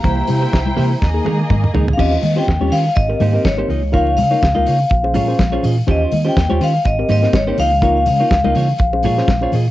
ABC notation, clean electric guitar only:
X:1
M:4/4
L:1/16
Q:"Swing 16ths" 1/4=123
K:Ebmix
V:1 name="Clean electric guitar"
[B,=EGc]2 z [B,EGc] z2 [B,EGc] z3 [A,_EAB] z3 [A,EAB] z | [DFGc]2 z [DFGc] z [DFGd] [DFGc] z3 [B,EGc] [B,EGc] z [B,EGc] [B,EFe] z | [B,EFd]2 z [B,EFd] z [B,EFe] [B,EFd] z3 [DFAd] [DFAd] z [DFAd] [DFAe] z | [DFGc]2 z [DFGc] z [DFGd] [DFGc] z3 [B,EGc] [B,EGc] z [B,EGc] [B,EFe] z |
[B,EFd]2 z [B,EFd] z [B,EFe] [B,EFd] z3 [B,FAd] [B,FAd] z [B,FAd] [B,FAe] z |]